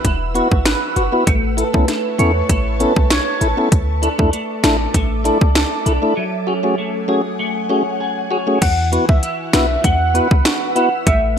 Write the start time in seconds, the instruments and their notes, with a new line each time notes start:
Already playing: clean electric guitar E3 F#4 B4, ambient pad B4 F#5 E6
0.05 808-style bass E1, clean electric guitar E4, kick, closed hi-hat
0.35 tonewheel organ B3 E4 F#4 B4, clean electric guitar F#4, closed hi-hat
0.52 808-style bass G#1, kick
0.66 clean electric guitar B4, snare, closed hi-hat
0.96 808-style bass F#1, tonewheel organ F#4 B4, clean electric guitar F#4, closed hi-hat
1.12 tonewheel organ B3 E4 F#4 B4
1.27 808-style bass A1, clean electric guitar A3, ambient pad B4 A5 C#6, kick, closed hi-hat
1.57 tonewheel organ E4 A4, clean electric guitar A4, closed hi-hat
1.73 808-style bass B1, tonewheel organ B3 C#4 E4 A4, kick
1.88 clean electric guitar E4, snare, closed hi-hat
2.18 808-style bass E2, tonewheel organ B3 C#4 E4 A4, clean electric guitar C#5, closed hi-hat
2.49 808-style bass A1, clean electric guitar E4, kick, closed hi-hat
2.80 tonewheel organ B3 C#4 E4 A4, clean electric guitar A4, closed hi-hat
2.96 808-style bass B1, kick
3.10 clean electric guitar C#5, snare, closed hi-hat
3.41 808-style bass A1, tonewheel organ E4 A4, clean electric guitar A4, closed hi-hat
3.57 tonewheel organ B3 C#4 E4 A4
3.72 808-style bass D2, ambient pad A4 E5 D6, kick, closed hi-hat
4.02 clean electric guitar D4, tonewheel organ E4 A4, closed hi-hat
4.18 808-style bass E2, tonewheel organ A3 D4 E4 A4, kick
4.33 clean electric guitar A3, closed hi-hat
4.63 808-style bass A1, tonewheel organ A3 D4 E4 A4, clean electric guitar A4, snare, closed hi-hat
4.94 808-style bass A1, clean electric guitar A3, kick, closed hi-hat
5.24 tonewheel organ A3 D4 E4 A4, clean electric guitar D4, closed hi-hat
5.41 808-style bass C#2, kick
5.55 clean electric guitar A4, snare, closed hi-hat
5.86 808-style bass B1, clean electric guitar D4, tonewheel organ E4 A4, closed hi-hat
6.02 tonewheel organ A3 D4 E4 A4
6.17 clean electric guitar F#3, ambient pad F#5 G#5
6.47 clean electric guitar C#4, tonewheel organ F#4 G#4
6.63 tonewheel organ A3 C#4 F#4 G#4
6.78 clean electric guitar A3
7.08 tonewheel organ A3 C#4 F#4 G#4, clean electric guitar G#4
7.39 clean electric guitar A3
7.69 tonewheel organ A3 C#4 F#4 G#4, clean electric guitar C#4
8.01 clean electric guitar G#4
8.31 clean electric guitar C#4, tonewheel organ F#4 G#4
8.47 tonewheel organ A3 C#4 F#4 G#4
8.62 808-style bass E2, clean electric guitar E3, ambient pad B4 F#5 E6, soft synth lead F#5, kick, closed hi-hat, crash
8.92 tonewheel organ B3 E4 F#4 B4, clean electric guitar F#4, closed hi-hat
9.09 808-style bass C#2, soft synth lead E5, kick
9.23 clean electric guitar E4, closed hi-hat
9.53 808-style bass B1, tonewheel organ B3 E4 F#4 B4, clean electric guitar F#4, soft synth lead E5, snare, closed hi-hat
9.84 808-style bass E2, clean electric guitar B3, soft synth lead F#5, kick, closed hi-hat
10.14 tonewheel organ B3 E4 F#4 B4, clean electric guitar B4, closed hi-hat
10.31 808-style bass C#2, kick
10.45 clean electric guitar F#4, snare, closed hi-hat
10.75 tonewheel organ B3 E4 F#4 B4, clean electric guitar E4, soft synth lead F#5, closed hi-hat
11.06 808-style bass A1, clean electric guitar A3, ambient pad B4 A5 C#6, soft synth lead E5, kick, closed hi-hat